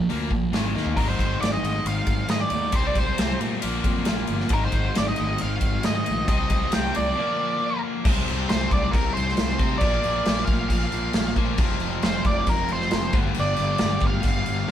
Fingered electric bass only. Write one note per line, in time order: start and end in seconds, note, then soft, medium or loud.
0.10 0.30 D2 medium
0.31 0.51 A#1 medium
0.52 0.73 G#1 medium
0.75 0.95 D#2 medium
0.97 1.12 G#1 medium
1.20 1.34 G#1 medium
1.42 1.57 G#1 medium
1.62 1.78 G#1 medium
1.85 2.00 G#1 medium
2.07 2.22 G#1 medium
2.28 2.44 G#2 medium
2.51 2.66 D#2 medium
2.74 2.89 C2 medium
2.96 3.11 C2 medium
3.19 3.34 C2 medium
3.41 3.56 A#2 medium
3.64 3.78 A#1 medium
3.85 4.00 F2 medium
4.07 4.22 A#1 medium
4.29 4.44 G1 medium
4.51 4.66 G#1 medium
4.73 4.88 G#1 medium
4.98 5.12 G#1 medium
5.20 5.34 G#1 medium
5.43 5.57 G#1 medium
5.62 5.77 G#1 medium
5.87 6.01 G#2 medium
6.10 6.23 A#1 medium
6.29 6.43 C2 medium
6.51 6.65 C2 medium
6.76 6.89 C2 medium
6.97 7.11 C2 medium
8.05 8.21 C2 medium
8.30 8.45 C2 medium
8.52 8.67 C2 medium
8.71 8.87 C2 medium
8.94 9.09 C2 medium
9.17 9.32 C2 medium
9.39 9.54 C2 loud
9.60 9.75 C3 medium
9.82 9.97 A#1 loud
10.04 10.20 A#1 medium
10.27 10.42 A#1 medium
10.47 10.63 A#1 medium
10.70 10.86 A#1 medium
10.93 11.08 A#1 medium
11.15 11.30 A#1 medium
11.37 11.52 A#2 medium
11.59 11.74 F1 medium
11.81 11.97 F1 medium
12.04 12.19 F1 medium
12.25 12.41 F1 medium
12.47 12.63 F1 medium
12.72 12.87 F1 medium
12.94 13.08 F1 loud
13.13 13.29 G1 medium
13.37 13.52 G1 medium
13.59 13.74 G1 medium
13.81 13.96 G1 medium
14.02 14.18 G1 medium
14.25 14.40 G1 medium
14.48 14.63 G1 medium